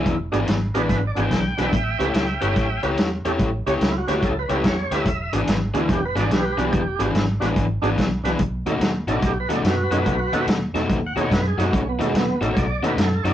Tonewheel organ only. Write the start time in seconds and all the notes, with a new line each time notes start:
Already playing: E4
0.32 D4 F#4 G#4
0.74 D4 F#4 G#4 A#4
0.79 B4
1.07 D5
1.15 D4 F#4 G#4 F#5
1.22 G5
1.57 D4 F#4 B4
1.61 E5 G5
1.99 C#4 G4 B4
2.40 C#4 G4 B4
2.83 C#4 G4 B4
3.25 C#4 G4 A4
3.66 C#4 G4 C#5
3.84 E4
3.98 F#4
4.07 C#4 G4 B4
4.25 A4
4.39 B4
4.48 C#4 G4 A4
4.66 C#5
4.91 C#4 G4 B4 E5
5.33 D4 F#4 G#4
5.74 D4 E4 F#4 G#4
5.92 G4
6.05 B4
6.16 D4 F#4 B4 D5
6.33 G4 B4
6.58 D4 F#4 B4
6.99 D4 F#4 G#4
7.40 D4 F#4 B4
7.82 D4 F#4 G#4
8.23 D4 F#4 B4
8.66 C#4 D#4 A4
9.08 C#4 D4 D#4 A4
9.26 G4
9.40 B4
9.50 C#4 D#4 A4
9.54 D5
9.67 F#4 B4
9.91 C#4 D#4 G#4
10.33 C#4 D#4 A4
10.74 C#4 D#4 A4
11.06 F#5
11.16 C#4 D#4 G#4
11.21 C#5
11.34 B4
11.47 G#4
11.58 C#4 D#4 F#4 G#4
11.75 C#4
11.89 B3
12.00 G#3 C#4 D#4 A4
12.17 B3
12.42 C#4 D#4 A4
12.54 C#5
12.58 D5
12.83 C#4 D#4 A4 B4
13.01 A4
13.24 C#4 D#4 A4 C#5
13.28 D5